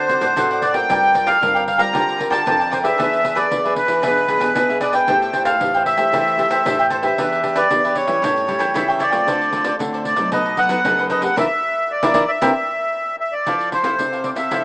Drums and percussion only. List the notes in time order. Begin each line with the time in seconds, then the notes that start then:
0.09 pandeiro
0.21 pandeiro
0.37 pandeiro
0.51 pandeiro
0.62 pandeiro
0.74 pandeiro
0.90 pandeiro
1.03 pandeiro
1.15 pandeiro
1.27 pandeiro
1.43 pandeiro
1.56 pandeiro
1.68 pandeiro
1.79 pandeiro
1.95 pandeiro
2.09 pandeiro
2.20 pandeiro
2.32 pandeiro
2.47 pandeiro
2.61 pandeiro
2.73 pandeiro
2.85 pandeiro
3.00 pandeiro
3.13 pandeiro
3.25 pandeiro
3.37 pandeiro
3.51 pandeiro
3.65 pandeiro
3.76 pandeiro
3.88 pandeiro
4.03 pandeiro
4.17 pandeiro
4.28 pandeiro
4.41 pandeiro
4.55 pandeiro
4.70 pandeiro
4.81 pandeiro
4.93 pandeiro
5.08 pandeiro
5.22 pandeiro
5.33 pandeiro
5.45 pandeiro
5.61 pandeiro
5.74 pandeiro
5.86 pandeiro
5.98 pandeiro
6.14 pandeiro
6.28 pandeiro
6.39 pandeiro
6.51 pandeiro
6.66 pandeiro
6.80 pandeiro
6.91 pandeiro
7.03 pandeiro
7.18 pandeiro
7.32 pandeiro
7.44 pandeiro
7.56 pandeiro
7.71 pandeiro
7.85 pandeiro
7.95 pandeiro
8.08 pandeiro
8.24 pandeiro
8.37 pandeiro
8.48 pandeiro
8.60 pandeiro
8.75 pandeiro
8.90 pandeiro
9.00 pandeiro
9.12 pandeiro
9.28 pandeiro
9.41 pandeiro
9.53 pandeiro
9.64 pandeiro
9.80 pandeiro
9.94 pandeiro
10.05 pandeiro
10.17 pandeiro
10.32 pandeiro
10.46 pandeiro
10.57 pandeiro
10.69 pandeiro
10.85 pandeiro
10.99 pandeiro
11.10 pandeiro
11.22 pandeiro
11.37 pandeiro
12.03 pandeiro
12.14 pandeiro
12.42 pandeiro
13.47 pandeiro
13.60 pandeiro
13.72 pandeiro
13.84 pandeiro
13.99 pandeiro
14.13 pandeiro
14.24 pandeiro
14.36 pandeiro
14.51 pandeiro